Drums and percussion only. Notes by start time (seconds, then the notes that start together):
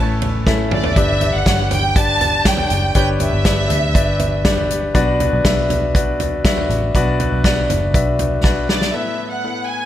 0.22 floor tom, ride
0.47 kick, snare
0.71 mid tom
0.84 floor tom
0.96 kick, closed hi-hat
1.21 closed hi-hat, floor tom
1.46 kick, snare, closed hi-hat
1.71 closed hi-hat, floor tom
1.96 kick, closed hi-hat
2.21 closed hi-hat, floor tom
2.45 kick, snare, closed hi-hat
2.57 floor tom
2.70 closed hi-hat
2.95 kick, closed hi-hat
3.20 closed hi-hat, floor tom
3.45 kick, snare, closed hi-hat
3.70 closed hi-hat, floor tom
3.95 kick, closed hi-hat
4.19 closed hi-hat, floor tom
4.45 kick, snare, closed hi-hat
4.57 floor tom
4.70 closed hi-hat
4.95 kick, closed hi-hat
5.20 closed hi-hat, floor tom
5.45 kick, snare, closed hi-hat
5.70 closed hi-hat, floor tom
5.95 kick, closed hi-hat
6.20 closed hi-hat, floor tom
6.45 kick, snare, closed hi-hat
6.57 floor tom
6.70 closed hi-hat
6.95 kick, closed hi-hat
7.20 closed hi-hat, floor tom
7.44 kick, snare, closed hi-hat
7.70 closed hi-hat, floor tom
7.94 kick, closed hi-hat
8.19 closed hi-hat, floor tom
8.44 kick, snare
8.69 snare
8.82 snare